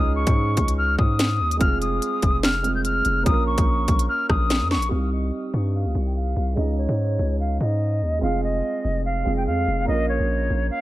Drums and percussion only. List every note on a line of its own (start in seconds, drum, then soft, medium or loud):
0.27 kick loud
0.27 closed hi-hat medium
0.57 kick loud
0.57 closed hi-hat medium
0.68 closed hi-hat medium
0.99 kick medium
1.19 snare loud
1.19 closed hi-hat loud
1.51 closed hi-hat medium
1.61 kick loud
1.61 closed hi-hat medium
1.82 closed hi-hat medium
2.02 closed hi-hat medium
2.22 kick loud
2.22 closed hi-hat medium
2.43 snare loud
2.64 closed hi-hat medium
2.85 closed hi-hat medium
3.05 closed hi-hat medium
3.26 kick loud
3.26 closed hi-hat medium
3.58 kick loud
3.58 closed hi-hat medium
3.88 kick loud
3.88 closed hi-hat medium
3.99 closed hi-hat medium
4.30 kick medium
4.30 cross-stick loud
4.50 snare loud
4.50 closed hi-hat loud
4.71 snare medium
4.82 closed hi-hat medium